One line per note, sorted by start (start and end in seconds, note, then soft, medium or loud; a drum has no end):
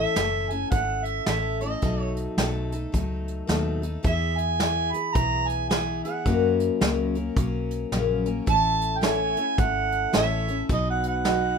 0.00 0.15 A2 medium
0.00 0.16 E3 medium
0.00 0.16 A3 medium
0.00 0.16 C#4 medium
0.00 0.16 E4 medium
0.00 0.17 A4 medium
0.00 0.51 E5 loud
0.16 0.64 F#1 medium
0.16 0.51 A2 medium
0.16 0.51 E3 medium
0.16 0.51 A3 medium
0.16 0.51 C#4 medium
0.16 0.50 E4 medium
0.16 0.49 A4 medium
0.16 snare loud
0.16 closed hi-hat medium
0.50 0.71 A3 soft
0.50 0.72 C#4 soft
0.50 0.72 E4 soft
0.50 0.72 A4 soft
0.50 0.70 G#5 medium
0.50 closed hi-hat medium
0.70 1.19 G#1 medium
0.70 1.26 A3 soft
0.70 1.26 C#4 medium
0.70 1.26 E4 medium
0.70 1.27 A4 medium
0.70 1.06 F#5 medium
0.70 kick loud
0.70 closed hi-hat medium
1.05 1.26 E5 medium
1.05 closed hi-hat soft
1.26 1.75 A1 medium
1.26 1.61 A2 medium
1.26 1.61 E3 medium
1.26 1.61 A3 medium
1.26 1.62 C#4 medium
1.26 1.62 E4 medium
1.26 1.61 A4 medium
1.26 1.59 E5 medium
1.26 snare loud
1.26 closed hi-hat medium
1.60 1.82 A3 soft
1.60 1.83 C#4 soft
1.60 1.83 E4 soft
1.60 1.83 A4 medium
1.60 2.02 D#5 medium
1.60 closed hi-hat soft
1.82 2.26 B1 medium
1.82 2.36 B2 medium
1.82 2.37 F#3 medium
1.82 2.37 A3 medium
1.82 2.37 D#4 medium
1.82 2.37 A4 medium
1.82 kick loud
1.82 closed hi-hat medium
2.02 2.13 C#5 medium
2.16 closed hi-hat medium
2.37 2.85 B1 medium
2.37 2.72 B2 medium
2.37 2.72 F#3 medium
2.37 2.72 A3 medium
2.37 2.72 D#4 medium
2.37 2.71 A4 medium
2.37 snare loud
2.37 closed hi-hat medium
2.72 2.92 A3 soft
2.72 2.93 D#4 soft
2.72 2.93 A4 medium
2.72 closed hi-hat medium
2.92 3.41 C#2 medium
2.92 3.47 F#3 medium
2.92 3.47 A3 medium
2.92 3.48 D#4 medium
2.92 3.48 A4 medium
2.92 kick loud
2.92 closed hi-hat medium
3.28 closed hi-hat medium
3.47 3.96 D#2 medium
3.47 3.82 B2 medium
3.47 3.83 F#3 medium
3.47 3.83 A3 medium
3.47 3.82 D#4 medium
3.47 3.81 A4 medium
3.47 snare medium
3.47 closed hi-hat medium
3.82 4.03 A3 soft
3.82 4.04 D#4 medium
3.82 4.04 A4 medium
3.82 closed hi-hat medium
4.03 4.91 E2 medium
4.03 4.58 E3 medium
4.03 4.59 B3 medium
4.03 4.60 E4 medium
4.03 4.60 G#4 medium
4.03 4.40 E5 medium
4.03 kick loud
4.03 closed hi-hat medium
4.38 4.94 G#5 loud
4.38 closed hi-hat medium
4.59 4.94 E3 medium
4.59 4.94 B3 medium
4.59 4.93 E4 medium
4.59 4.91 G#4 medium
4.59 snare loud
4.59 closed hi-hat medium
4.92 5.14 B3 soft
4.92 5.15 E4 soft
4.92 5.15 G#4 soft
4.92 5.16 B5 medium
4.92 closed hi-hat medium
5.14 6.02 B1 medium
5.14 5.70 E3 medium
5.14 5.70 B3 medium
5.14 5.71 E4 medium
5.14 5.71 G#4 medium
5.14 5.50 A#5 loud
5.14 kick loud
5.14 closed hi-hat medium
5.48 5.69 G#5 medium
5.48 closed hi-hat medium
5.69 6.05 E3 medium
5.69 6.05 B3 medium
5.69 6.04 E4 medium
5.69 6.04 G#4 medium
5.69 6.02 G#5 medium
5.69 snare loud
5.69 closed hi-hat medium
6.03 6.26 B3 soft
6.03 6.26 E4 soft
6.03 6.26 G#4 medium
6.03 6.56 F#5 medium
6.03 closed hi-hat medium
6.26 6.69 F#2 medium
6.26 6.80 F#2 medium
6.26 6.81 C#3 medium
6.26 6.81 F#3 medium
6.26 6.81 A#3 medium
6.26 6.82 C#4 medium
6.26 6.81 A#4 medium
6.26 kick loud
6.26 closed hi-hat medium
6.60 closed hi-hat medium
6.81 7.28 C#2 medium
6.81 7.15 F#2 medium
6.81 7.16 C#3 medium
6.81 7.16 F#3 medium
6.81 7.16 A#3 medium
6.81 7.16 C#4 medium
6.81 7.15 A#4 medium
6.81 snare loud
6.81 closed hi-hat medium
7.15 7.36 F#3 soft
7.15 7.36 A#3 soft
7.15 7.37 C#4 soft
7.15 7.37 A#4 soft
7.15 closed hi-hat medium
7.37 7.84 B1 medium
7.37 7.92 F#3 medium
7.37 7.92 A#3 medium
7.37 7.92 C#4 medium
7.37 7.93 A#4 medium
7.37 kick loud
7.37 closed hi-hat medium
7.71 closed hi-hat medium
7.92 8.39 A#1 medium
7.92 8.26 F#2 medium
7.92 8.27 C#3 medium
7.92 8.27 F#3 medium
7.92 8.26 A#3 medium
7.92 8.25 C#4 medium
7.92 8.25 A#4 medium
7.92 snare loud
7.92 closed hi-hat medium
8.25 8.47 F#3 soft
8.25 8.47 A#3 soft
8.25 8.46 C#4 medium
8.25 8.47 A#4 medium
8.25 closed hi-hat medium
8.46 9.34 A1 medium
8.46 9.00 A2 medium
8.46 9.01 E3 medium
8.46 9.01 A3 medium
8.46 9.01 C#4 medium
8.46 9.01 E4 medium
8.46 9.02 A4 medium
8.46 8.99 A5 loud
8.46 kick loud
8.46 closed hi-hat medium
8.81 closed hi-hat medium
8.97 9.07 G5 medium
9.01 9.36 A2 medium
9.01 9.36 E3 medium
9.01 9.37 A3 medium
9.01 9.36 C#4 medium
9.01 9.36 E4 medium
9.01 9.43 E4 medium
9.01 9.35 A4 medium
9.01 9.43 A4 medium
9.01 9.43 C#5 medium
9.01 snare loud
9.01 closed hi-hat medium
9.05 9.60 G#5 medium
9.37 9.57 A3 soft
9.37 9.58 C#4 soft
9.37 9.59 E4 soft
9.37 9.58 A4 soft
9.37 closed hi-hat medium
9.58 10.05 G#1 medium
9.58 10.12 A3 medium
9.58 10.13 C#4 medium
9.58 10.13 E4 medium
9.58 10.13 A4 medium
9.58 10.14 F#5 loud
9.58 kick loud
9.58 closed hi-hat medium
9.92 closed hi-hat medium
10.13 10.62 A1 medium
10.13 10.47 A2 medium
10.13 10.47 E3 medium
10.13 10.48 A3 medium
10.13 10.48 C#4 medium
10.13 10.53 E4 medium
10.13 10.48 E4 medium
10.13 10.54 A4 medium
10.13 10.47 A4 medium
10.13 10.54 C#5 medium
10.13 10.67 E5 medium
10.13 snare loud
10.13 closed hi-hat medium
10.48 10.69 A3 soft
10.48 10.70 C#4 soft
10.48 10.70 E4 soft
10.48 10.69 A4 medium
10.48 closed hi-hat medium
10.69 11.56 B1 medium
10.69 11.24 B2 medium
10.69 11.23 F#3 medium
10.69 11.25 B3 medium
10.69 11.24 D#4 medium
10.69 11.26 B4 medium
10.69 10.87 D#5 medium
10.69 kick loud
10.69 closed hi-hat medium
10.90 11.04 F#5 medium
11.03 closed hi-hat medium
11.08 11.58 F#5 loud
11.25 11.58 B2 medium
11.25 11.58 F#3 medium
11.25 11.58 B3 medium
11.25 11.58 D#4 medium
11.25 11.58 F#4 medium
11.25 11.57 B4 medium
11.25 11.58 B4 medium
11.25 snare loud
11.25 closed hi-hat medium